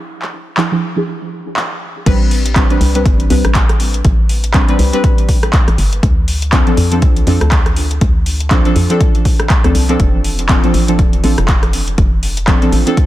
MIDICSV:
0, 0, Header, 1, 4, 480
1, 0, Start_track
1, 0, Key_signature, 0, "minor"
1, 0, Tempo, 495868
1, 77, Time_signature, 4, 2, 24, 8
1, 12643, End_track
2, 0, Start_track
2, 0, Title_t, "Synth stab"
2, 0, Program_c, 0, 62
2, 553, Note_on_c, 0, 53, 86
2, 556, Note_on_c, 0, 62, 75
2, 559, Note_on_c, 0, 64, 78
2, 561, Note_on_c, 0, 68, 95
2, 661, Note_off_c, 0, 53, 0
2, 662, Note_off_c, 0, 62, 0
2, 663, Note_off_c, 0, 64, 0
2, 665, Note_off_c, 0, 68, 0
2, 693, Note_on_c, 0, 53, 89
2, 695, Note_on_c, 0, 62, 80
2, 697, Note_on_c, 0, 64, 80
2, 700, Note_on_c, 0, 68, 97
2, 901, Note_off_c, 0, 53, 0
2, 902, Note_off_c, 0, 62, 0
2, 903, Note_off_c, 0, 64, 0
2, 905, Note_off_c, 0, 68, 0
2, 929, Note_on_c, 0, 53, 87
2, 934, Note_on_c, 0, 62, 76
2, 939, Note_on_c, 0, 64, 76
2, 944, Note_on_c, 0, 68, 96
2, 1982, Note_off_c, 0, 53, 0
2, 1984, Note_off_c, 0, 62, 0
2, 1987, Note_off_c, 0, 64, 0
2, 1989, Note_off_c, 0, 68, 0
2, 1994, Note_on_c, 0, 55, 95
2, 1997, Note_on_c, 0, 60, 90
2, 1999, Note_on_c, 0, 62, 91
2, 2002, Note_on_c, 0, 71, 110
2, 2435, Note_off_c, 0, 55, 0
2, 2436, Note_off_c, 0, 60, 0
2, 2438, Note_off_c, 0, 62, 0
2, 2439, Note_off_c, 0, 71, 0
2, 2474, Note_on_c, 0, 55, 74
2, 2476, Note_on_c, 0, 60, 65
2, 2479, Note_on_c, 0, 62, 64
2, 2481, Note_on_c, 0, 71, 78
2, 2593, Note_off_c, 0, 55, 0
2, 2595, Note_off_c, 0, 60, 0
2, 2596, Note_off_c, 0, 62, 0
2, 2597, Note_off_c, 0, 71, 0
2, 2612, Note_on_c, 0, 55, 79
2, 2614, Note_on_c, 0, 60, 72
2, 2617, Note_on_c, 0, 62, 73
2, 2620, Note_on_c, 0, 71, 87
2, 2821, Note_off_c, 0, 55, 0
2, 2822, Note_off_c, 0, 60, 0
2, 2823, Note_off_c, 0, 62, 0
2, 2824, Note_off_c, 0, 71, 0
2, 2852, Note_on_c, 0, 55, 74
2, 2855, Note_on_c, 0, 60, 67
2, 2857, Note_on_c, 0, 62, 67
2, 2860, Note_on_c, 0, 71, 81
2, 3171, Note_off_c, 0, 55, 0
2, 3172, Note_off_c, 0, 60, 0
2, 3174, Note_off_c, 0, 62, 0
2, 3175, Note_off_c, 0, 71, 0
2, 3194, Note_on_c, 0, 55, 77
2, 3196, Note_on_c, 0, 60, 71
2, 3199, Note_on_c, 0, 62, 71
2, 3202, Note_on_c, 0, 71, 84
2, 3330, Note_off_c, 0, 55, 0
2, 3332, Note_off_c, 0, 60, 0
2, 3333, Note_off_c, 0, 62, 0
2, 3334, Note_off_c, 0, 71, 0
2, 4393, Note_on_c, 0, 55, 88
2, 4395, Note_on_c, 0, 60, 78
2, 4398, Note_on_c, 0, 62, 82
2, 4401, Note_on_c, 0, 71, 98
2, 4501, Note_off_c, 0, 55, 0
2, 4502, Note_off_c, 0, 60, 0
2, 4503, Note_off_c, 0, 62, 0
2, 4504, Note_off_c, 0, 71, 0
2, 4532, Note_on_c, 0, 55, 93
2, 4534, Note_on_c, 0, 60, 87
2, 4537, Note_on_c, 0, 62, 87
2, 4540, Note_on_c, 0, 71, 101
2, 4741, Note_off_c, 0, 55, 0
2, 4742, Note_off_c, 0, 60, 0
2, 4743, Note_off_c, 0, 62, 0
2, 4745, Note_off_c, 0, 71, 0
2, 4769, Note_on_c, 0, 55, 88
2, 4774, Note_on_c, 0, 60, 79
2, 4779, Note_on_c, 0, 62, 82
2, 4784, Note_on_c, 0, 71, 97
2, 5822, Note_off_c, 0, 55, 0
2, 5824, Note_off_c, 0, 60, 0
2, 5827, Note_off_c, 0, 62, 0
2, 5829, Note_off_c, 0, 71, 0
2, 6314, Note_on_c, 0, 53, 71
2, 6316, Note_on_c, 0, 60, 66
2, 6319, Note_on_c, 0, 62, 66
2, 6321, Note_on_c, 0, 69, 82
2, 6433, Note_off_c, 0, 53, 0
2, 6435, Note_off_c, 0, 60, 0
2, 6436, Note_off_c, 0, 62, 0
2, 6437, Note_off_c, 0, 69, 0
2, 6452, Note_on_c, 0, 53, 76
2, 6455, Note_on_c, 0, 60, 73
2, 6457, Note_on_c, 0, 62, 74
2, 6460, Note_on_c, 0, 69, 87
2, 6661, Note_off_c, 0, 53, 0
2, 6662, Note_off_c, 0, 60, 0
2, 6663, Note_off_c, 0, 62, 0
2, 6665, Note_off_c, 0, 69, 0
2, 6692, Note_on_c, 0, 53, 77
2, 6694, Note_on_c, 0, 60, 67
2, 6697, Note_on_c, 0, 62, 68
2, 6700, Note_on_c, 0, 69, 80
2, 7011, Note_off_c, 0, 53, 0
2, 7012, Note_off_c, 0, 60, 0
2, 7014, Note_off_c, 0, 62, 0
2, 7015, Note_off_c, 0, 69, 0
2, 7033, Note_on_c, 0, 53, 76
2, 7036, Note_on_c, 0, 60, 67
2, 7039, Note_on_c, 0, 62, 71
2, 7041, Note_on_c, 0, 69, 83
2, 7170, Note_off_c, 0, 53, 0
2, 7172, Note_off_c, 0, 60, 0
2, 7173, Note_off_c, 0, 62, 0
2, 7174, Note_off_c, 0, 69, 0
2, 8234, Note_on_c, 0, 53, 88
2, 8236, Note_on_c, 0, 60, 83
2, 8239, Note_on_c, 0, 62, 83
2, 8241, Note_on_c, 0, 69, 96
2, 8341, Note_off_c, 0, 53, 0
2, 8342, Note_off_c, 0, 60, 0
2, 8343, Note_off_c, 0, 62, 0
2, 8345, Note_off_c, 0, 69, 0
2, 8372, Note_on_c, 0, 53, 90
2, 8375, Note_on_c, 0, 60, 83
2, 8377, Note_on_c, 0, 62, 86
2, 8380, Note_on_c, 0, 69, 99
2, 8581, Note_off_c, 0, 53, 0
2, 8582, Note_off_c, 0, 60, 0
2, 8583, Note_off_c, 0, 62, 0
2, 8585, Note_off_c, 0, 69, 0
2, 8609, Note_on_c, 0, 53, 87
2, 8614, Note_on_c, 0, 60, 78
2, 8619, Note_on_c, 0, 62, 83
2, 8624, Note_on_c, 0, 69, 101
2, 9305, Note_off_c, 0, 53, 0
2, 9307, Note_off_c, 0, 60, 0
2, 9310, Note_off_c, 0, 62, 0
2, 9312, Note_off_c, 0, 69, 0
2, 9332, Note_on_c, 0, 53, 80
2, 9335, Note_on_c, 0, 60, 75
2, 9337, Note_on_c, 0, 62, 74
2, 9340, Note_on_c, 0, 69, 90
2, 9433, Note_off_c, 0, 53, 0
2, 9434, Note_off_c, 0, 60, 0
2, 9435, Note_off_c, 0, 62, 0
2, 9437, Note_off_c, 0, 69, 0
2, 9568, Note_on_c, 0, 53, 101
2, 9574, Note_on_c, 0, 60, 94
2, 9579, Note_on_c, 0, 62, 93
2, 9584, Note_on_c, 0, 69, 107
2, 10129, Note_off_c, 0, 53, 0
2, 10132, Note_off_c, 0, 60, 0
2, 10135, Note_off_c, 0, 62, 0
2, 10137, Note_off_c, 0, 69, 0
2, 10153, Note_on_c, 0, 53, 69
2, 10156, Note_on_c, 0, 60, 63
2, 10159, Note_on_c, 0, 62, 63
2, 10161, Note_on_c, 0, 69, 81
2, 10273, Note_off_c, 0, 53, 0
2, 10275, Note_off_c, 0, 60, 0
2, 10276, Note_off_c, 0, 62, 0
2, 10277, Note_off_c, 0, 69, 0
2, 10293, Note_on_c, 0, 53, 83
2, 10295, Note_on_c, 0, 60, 76
2, 10297, Note_on_c, 0, 62, 71
2, 10300, Note_on_c, 0, 69, 88
2, 10501, Note_off_c, 0, 53, 0
2, 10502, Note_off_c, 0, 60, 0
2, 10503, Note_off_c, 0, 62, 0
2, 10505, Note_off_c, 0, 69, 0
2, 10533, Note_on_c, 0, 53, 74
2, 10535, Note_on_c, 0, 60, 69
2, 10537, Note_on_c, 0, 62, 69
2, 10540, Note_on_c, 0, 69, 81
2, 10851, Note_off_c, 0, 53, 0
2, 10853, Note_off_c, 0, 60, 0
2, 10854, Note_off_c, 0, 62, 0
2, 10855, Note_off_c, 0, 69, 0
2, 10874, Note_on_c, 0, 53, 78
2, 10876, Note_on_c, 0, 60, 70
2, 10879, Note_on_c, 0, 62, 71
2, 10881, Note_on_c, 0, 69, 84
2, 11010, Note_off_c, 0, 53, 0
2, 11012, Note_off_c, 0, 60, 0
2, 11013, Note_off_c, 0, 62, 0
2, 11014, Note_off_c, 0, 69, 0
2, 12074, Note_on_c, 0, 53, 88
2, 12077, Note_on_c, 0, 60, 80
2, 12079, Note_on_c, 0, 62, 77
2, 12081, Note_on_c, 0, 69, 97
2, 12181, Note_off_c, 0, 53, 0
2, 12182, Note_off_c, 0, 60, 0
2, 12184, Note_off_c, 0, 62, 0
2, 12185, Note_off_c, 0, 69, 0
2, 12212, Note_on_c, 0, 53, 93
2, 12215, Note_on_c, 0, 60, 88
2, 12217, Note_on_c, 0, 62, 87
2, 12220, Note_on_c, 0, 69, 100
2, 12421, Note_off_c, 0, 53, 0
2, 12422, Note_off_c, 0, 60, 0
2, 12423, Note_off_c, 0, 62, 0
2, 12424, Note_off_c, 0, 69, 0
2, 12449, Note_on_c, 0, 53, 85
2, 12454, Note_on_c, 0, 60, 83
2, 12459, Note_on_c, 0, 62, 83
2, 12464, Note_on_c, 0, 69, 102
2, 12643, Note_off_c, 0, 53, 0
2, 12643, Note_off_c, 0, 60, 0
2, 12643, Note_off_c, 0, 62, 0
2, 12643, Note_off_c, 0, 69, 0
2, 12643, End_track
3, 0, Start_track
3, 0, Title_t, "FM bass"
3, 0, Program_c, 1, 39
3, 1998, Note_on_c, 1, 33, 99
3, 2578, Note_off_c, 1, 33, 0
3, 2718, Note_on_c, 1, 36, 79
3, 2958, Note_on_c, 1, 31, 109
3, 2972, Note_off_c, 1, 36, 0
3, 3163, Note_off_c, 1, 31, 0
3, 3198, Note_on_c, 1, 36, 98
3, 3312, Note_off_c, 1, 36, 0
3, 3336, Note_on_c, 1, 33, 95
3, 3889, Note_off_c, 1, 33, 0
3, 3918, Note_on_c, 1, 33, 97
3, 4498, Note_off_c, 1, 33, 0
3, 4637, Note_on_c, 1, 36, 80
3, 4752, Note_off_c, 1, 36, 0
3, 5496, Note_on_c, 1, 33, 88
3, 5580, Note_off_c, 1, 33, 0
3, 5597, Note_on_c, 1, 31, 84
3, 5802, Note_off_c, 1, 31, 0
3, 5837, Note_on_c, 1, 38, 95
3, 6418, Note_off_c, 1, 38, 0
3, 6557, Note_on_c, 1, 41, 81
3, 6797, Note_on_c, 1, 36, 112
3, 6812, Note_off_c, 1, 41, 0
3, 7003, Note_off_c, 1, 36, 0
3, 7038, Note_on_c, 1, 41, 101
3, 7152, Note_off_c, 1, 41, 0
3, 7176, Note_on_c, 1, 38, 101
3, 7730, Note_off_c, 1, 38, 0
3, 7758, Note_on_c, 1, 38, 96
3, 8338, Note_off_c, 1, 38, 0
3, 8477, Note_on_c, 1, 41, 84
3, 8592, Note_off_c, 1, 41, 0
3, 9335, Note_on_c, 1, 38, 91
3, 9419, Note_off_c, 1, 38, 0
3, 9437, Note_on_c, 1, 36, 84
3, 9642, Note_off_c, 1, 36, 0
3, 9677, Note_on_c, 1, 29, 97
3, 10258, Note_off_c, 1, 29, 0
3, 10397, Note_on_c, 1, 33, 83
3, 10637, Note_on_c, 1, 26, 102
3, 10652, Note_off_c, 1, 33, 0
3, 10842, Note_off_c, 1, 26, 0
3, 10878, Note_on_c, 1, 33, 100
3, 10992, Note_off_c, 1, 33, 0
3, 11017, Note_on_c, 1, 29, 98
3, 11570, Note_off_c, 1, 29, 0
3, 11597, Note_on_c, 1, 29, 97
3, 12178, Note_off_c, 1, 29, 0
3, 12318, Note_on_c, 1, 33, 85
3, 12432, Note_off_c, 1, 33, 0
3, 12643, End_track
4, 0, Start_track
4, 0, Title_t, "Drums"
4, 213, Note_on_c, 9, 39, 33
4, 310, Note_off_c, 9, 39, 0
4, 554, Note_on_c, 9, 39, 114
4, 651, Note_off_c, 9, 39, 0
4, 1514, Note_on_c, 9, 39, 116
4, 1611, Note_off_c, 9, 39, 0
4, 1997, Note_on_c, 9, 36, 123
4, 1998, Note_on_c, 9, 42, 85
4, 1998, Note_on_c, 9, 49, 107
4, 2094, Note_off_c, 9, 36, 0
4, 2095, Note_off_c, 9, 42, 0
4, 2095, Note_off_c, 9, 49, 0
4, 2238, Note_on_c, 9, 46, 104
4, 2335, Note_off_c, 9, 46, 0
4, 2377, Note_on_c, 9, 42, 56
4, 2474, Note_off_c, 9, 42, 0
4, 2475, Note_on_c, 9, 39, 127
4, 2478, Note_on_c, 9, 36, 114
4, 2478, Note_on_c, 9, 42, 84
4, 2572, Note_off_c, 9, 39, 0
4, 2574, Note_off_c, 9, 36, 0
4, 2575, Note_off_c, 9, 42, 0
4, 2617, Note_on_c, 9, 42, 37
4, 2714, Note_off_c, 9, 42, 0
4, 2719, Note_on_c, 9, 46, 105
4, 2816, Note_off_c, 9, 46, 0
4, 2857, Note_on_c, 9, 42, 55
4, 2954, Note_off_c, 9, 42, 0
4, 2958, Note_on_c, 9, 36, 122
4, 2958, Note_on_c, 9, 42, 77
4, 3054, Note_off_c, 9, 36, 0
4, 3055, Note_off_c, 9, 42, 0
4, 3096, Note_on_c, 9, 42, 40
4, 3193, Note_off_c, 9, 42, 0
4, 3197, Note_on_c, 9, 46, 109
4, 3294, Note_off_c, 9, 46, 0
4, 3336, Note_on_c, 9, 37, 80
4, 3336, Note_on_c, 9, 42, 38
4, 3433, Note_off_c, 9, 37, 0
4, 3433, Note_off_c, 9, 42, 0
4, 3434, Note_on_c, 9, 39, 120
4, 3437, Note_on_c, 9, 42, 82
4, 3438, Note_on_c, 9, 36, 119
4, 3531, Note_off_c, 9, 39, 0
4, 3534, Note_off_c, 9, 36, 0
4, 3534, Note_off_c, 9, 42, 0
4, 3576, Note_on_c, 9, 37, 63
4, 3576, Note_on_c, 9, 42, 39
4, 3672, Note_off_c, 9, 37, 0
4, 3672, Note_off_c, 9, 42, 0
4, 3677, Note_on_c, 9, 46, 106
4, 3774, Note_off_c, 9, 46, 0
4, 3816, Note_on_c, 9, 42, 38
4, 3912, Note_off_c, 9, 42, 0
4, 3916, Note_on_c, 9, 42, 78
4, 3917, Note_on_c, 9, 36, 127
4, 4013, Note_off_c, 9, 42, 0
4, 4014, Note_off_c, 9, 36, 0
4, 4156, Note_on_c, 9, 46, 105
4, 4253, Note_off_c, 9, 46, 0
4, 4295, Note_on_c, 9, 42, 52
4, 4392, Note_off_c, 9, 42, 0
4, 4393, Note_on_c, 9, 39, 127
4, 4396, Note_on_c, 9, 42, 84
4, 4397, Note_on_c, 9, 36, 116
4, 4490, Note_off_c, 9, 39, 0
4, 4493, Note_off_c, 9, 42, 0
4, 4494, Note_off_c, 9, 36, 0
4, 4535, Note_on_c, 9, 42, 38
4, 4632, Note_off_c, 9, 42, 0
4, 4637, Note_on_c, 9, 46, 109
4, 4734, Note_off_c, 9, 46, 0
4, 4775, Note_on_c, 9, 42, 53
4, 4872, Note_off_c, 9, 42, 0
4, 4877, Note_on_c, 9, 36, 127
4, 4877, Note_on_c, 9, 42, 79
4, 4974, Note_off_c, 9, 36, 0
4, 4974, Note_off_c, 9, 42, 0
4, 5016, Note_on_c, 9, 42, 40
4, 5113, Note_off_c, 9, 42, 0
4, 5117, Note_on_c, 9, 36, 67
4, 5117, Note_on_c, 9, 46, 112
4, 5214, Note_off_c, 9, 36, 0
4, 5214, Note_off_c, 9, 46, 0
4, 5256, Note_on_c, 9, 37, 77
4, 5256, Note_on_c, 9, 42, 38
4, 5353, Note_off_c, 9, 37, 0
4, 5353, Note_off_c, 9, 42, 0
4, 5355, Note_on_c, 9, 39, 122
4, 5357, Note_on_c, 9, 36, 127
4, 5358, Note_on_c, 9, 42, 84
4, 5451, Note_off_c, 9, 39, 0
4, 5454, Note_off_c, 9, 36, 0
4, 5454, Note_off_c, 9, 42, 0
4, 5496, Note_on_c, 9, 37, 60
4, 5496, Note_on_c, 9, 42, 40
4, 5593, Note_off_c, 9, 37, 0
4, 5593, Note_off_c, 9, 42, 0
4, 5598, Note_on_c, 9, 46, 106
4, 5695, Note_off_c, 9, 46, 0
4, 5737, Note_on_c, 9, 42, 37
4, 5833, Note_off_c, 9, 42, 0
4, 5837, Note_on_c, 9, 36, 127
4, 5838, Note_on_c, 9, 42, 79
4, 5934, Note_off_c, 9, 36, 0
4, 5935, Note_off_c, 9, 42, 0
4, 6078, Note_on_c, 9, 46, 111
4, 6174, Note_off_c, 9, 46, 0
4, 6216, Note_on_c, 9, 42, 52
4, 6313, Note_off_c, 9, 42, 0
4, 6315, Note_on_c, 9, 39, 122
4, 6317, Note_on_c, 9, 36, 119
4, 6318, Note_on_c, 9, 42, 80
4, 6412, Note_off_c, 9, 39, 0
4, 6414, Note_off_c, 9, 36, 0
4, 6415, Note_off_c, 9, 42, 0
4, 6455, Note_on_c, 9, 42, 35
4, 6552, Note_off_c, 9, 42, 0
4, 6556, Note_on_c, 9, 46, 105
4, 6653, Note_off_c, 9, 46, 0
4, 6695, Note_on_c, 9, 42, 49
4, 6791, Note_off_c, 9, 42, 0
4, 6797, Note_on_c, 9, 36, 127
4, 6797, Note_on_c, 9, 42, 74
4, 6893, Note_off_c, 9, 42, 0
4, 6894, Note_off_c, 9, 36, 0
4, 6935, Note_on_c, 9, 42, 37
4, 7032, Note_off_c, 9, 42, 0
4, 7036, Note_on_c, 9, 46, 111
4, 7133, Note_off_c, 9, 46, 0
4, 7175, Note_on_c, 9, 37, 76
4, 7175, Note_on_c, 9, 42, 36
4, 7272, Note_off_c, 9, 37, 0
4, 7272, Note_off_c, 9, 42, 0
4, 7273, Note_on_c, 9, 39, 119
4, 7276, Note_on_c, 9, 42, 78
4, 7277, Note_on_c, 9, 36, 127
4, 7370, Note_off_c, 9, 39, 0
4, 7373, Note_off_c, 9, 42, 0
4, 7374, Note_off_c, 9, 36, 0
4, 7415, Note_on_c, 9, 37, 61
4, 7415, Note_on_c, 9, 42, 35
4, 7512, Note_off_c, 9, 37, 0
4, 7512, Note_off_c, 9, 42, 0
4, 7516, Note_on_c, 9, 46, 112
4, 7613, Note_off_c, 9, 46, 0
4, 7656, Note_on_c, 9, 42, 36
4, 7752, Note_off_c, 9, 42, 0
4, 7757, Note_on_c, 9, 36, 125
4, 7757, Note_on_c, 9, 42, 73
4, 7853, Note_off_c, 9, 42, 0
4, 7854, Note_off_c, 9, 36, 0
4, 7997, Note_on_c, 9, 46, 107
4, 8094, Note_off_c, 9, 46, 0
4, 8135, Note_on_c, 9, 42, 50
4, 8232, Note_off_c, 9, 42, 0
4, 8234, Note_on_c, 9, 39, 118
4, 8237, Note_on_c, 9, 36, 122
4, 8237, Note_on_c, 9, 42, 77
4, 8331, Note_off_c, 9, 39, 0
4, 8334, Note_off_c, 9, 36, 0
4, 8334, Note_off_c, 9, 42, 0
4, 8376, Note_on_c, 9, 42, 36
4, 8473, Note_off_c, 9, 42, 0
4, 8477, Note_on_c, 9, 46, 106
4, 8574, Note_off_c, 9, 46, 0
4, 8616, Note_on_c, 9, 42, 48
4, 8712, Note_off_c, 9, 42, 0
4, 8717, Note_on_c, 9, 36, 127
4, 8718, Note_on_c, 9, 42, 73
4, 8814, Note_off_c, 9, 36, 0
4, 8814, Note_off_c, 9, 42, 0
4, 8856, Note_on_c, 9, 42, 37
4, 8953, Note_off_c, 9, 42, 0
4, 8956, Note_on_c, 9, 46, 109
4, 8957, Note_on_c, 9, 36, 69
4, 9053, Note_off_c, 9, 46, 0
4, 9054, Note_off_c, 9, 36, 0
4, 9095, Note_on_c, 9, 37, 76
4, 9095, Note_on_c, 9, 42, 36
4, 9192, Note_off_c, 9, 37, 0
4, 9192, Note_off_c, 9, 42, 0
4, 9193, Note_on_c, 9, 39, 120
4, 9196, Note_on_c, 9, 42, 75
4, 9197, Note_on_c, 9, 36, 123
4, 9290, Note_off_c, 9, 39, 0
4, 9293, Note_off_c, 9, 42, 0
4, 9294, Note_off_c, 9, 36, 0
4, 9335, Note_on_c, 9, 37, 62
4, 9335, Note_on_c, 9, 42, 35
4, 9432, Note_off_c, 9, 37, 0
4, 9432, Note_off_c, 9, 42, 0
4, 9437, Note_on_c, 9, 46, 109
4, 9534, Note_off_c, 9, 46, 0
4, 9576, Note_on_c, 9, 42, 35
4, 9673, Note_off_c, 9, 42, 0
4, 9677, Note_on_c, 9, 36, 120
4, 9677, Note_on_c, 9, 42, 76
4, 9774, Note_off_c, 9, 36, 0
4, 9774, Note_off_c, 9, 42, 0
4, 9917, Note_on_c, 9, 46, 102
4, 10013, Note_off_c, 9, 46, 0
4, 10056, Note_on_c, 9, 42, 50
4, 10153, Note_off_c, 9, 42, 0
4, 10154, Note_on_c, 9, 39, 119
4, 10157, Note_on_c, 9, 36, 117
4, 10157, Note_on_c, 9, 42, 78
4, 10251, Note_off_c, 9, 39, 0
4, 10254, Note_off_c, 9, 36, 0
4, 10254, Note_off_c, 9, 42, 0
4, 10296, Note_on_c, 9, 42, 35
4, 10393, Note_off_c, 9, 42, 0
4, 10397, Note_on_c, 9, 46, 101
4, 10493, Note_off_c, 9, 46, 0
4, 10535, Note_on_c, 9, 42, 49
4, 10632, Note_off_c, 9, 42, 0
4, 10637, Note_on_c, 9, 36, 118
4, 10637, Note_on_c, 9, 42, 71
4, 10734, Note_off_c, 9, 36, 0
4, 10734, Note_off_c, 9, 42, 0
4, 10775, Note_on_c, 9, 42, 36
4, 10872, Note_off_c, 9, 42, 0
4, 10877, Note_on_c, 9, 46, 105
4, 10973, Note_off_c, 9, 46, 0
4, 11015, Note_on_c, 9, 37, 80
4, 11015, Note_on_c, 9, 42, 37
4, 11112, Note_off_c, 9, 37, 0
4, 11112, Note_off_c, 9, 42, 0
4, 11114, Note_on_c, 9, 39, 118
4, 11117, Note_on_c, 9, 36, 123
4, 11117, Note_on_c, 9, 42, 76
4, 11211, Note_off_c, 9, 39, 0
4, 11214, Note_off_c, 9, 36, 0
4, 11214, Note_off_c, 9, 42, 0
4, 11256, Note_on_c, 9, 37, 63
4, 11256, Note_on_c, 9, 42, 36
4, 11353, Note_off_c, 9, 37, 0
4, 11353, Note_off_c, 9, 42, 0
4, 11357, Note_on_c, 9, 46, 109
4, 11454, Note_off_c, 9, 46, 0
4, 11496, Note_on_c, 9, 42, 34
4, 11592, Note_off_c, 9, 42, 0
4, 11597, Note_on_c, 9, 36, 120
4, 11597, Note_on_c, 9, 42, 80
4, 11693, Note_off_c, 9, 42, 0
4, 11694, Note_off_c, 9, 36, 0
4, 11837, Note_on_c, 9, 46, 105
4, 11934, Note_off_c, 9, 46, 0
4, 11976, Note_on_c, 9, 42, 51
4, 12073, Note_off_c, 9, 42, 0
4, 12074, Note_on_c, 9, 39, 120
4, 12077, Note_on_c, 9, 36, 113
4, 12077, Note_on_c, 9, 42, 80
4, 12171, Note_off_c, 9, 39, 0
4, 12174, Note_off_c, 9, 36, 0
4, 12174, Note_off_c, 9, 42, 0
4, 12216, Note_on_c, 9, 42, 38
4, 12313, Note_off_c, 9, 42, 0
4, 12318, Note_on_c, 9, 46, 101
4, 12414, Note_off_c, 9, 46, 0
4, 12456, Note_on_c, 9, 42, 50
4, 12553, Note_off_c, 9, 42, 0
4, 12558, Note_on_c, 9, 36, 117
4, 12558, Note_on_c, 9, 42, 77
4, 12643, Note_off_c, 9, 36, 0
4, 12643, Note_off_c, 9, 42, 0
4, 12643, End_track
0, 0, End_of_file